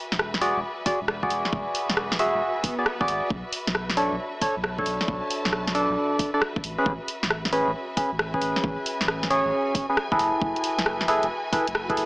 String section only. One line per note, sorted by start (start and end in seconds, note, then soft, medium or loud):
0.00 10.18 F#4 medium
0.00 10.19 B4 medium
0.00 10.19 E5 medium
0.00 3.30 G#5 medium
4.38 6.64 A5 medium
7.71 12.06 G#5 medium
10.19 12.06 F#4 medium
10.46 12.06 B4 medium
10.67 12.06 E5 medium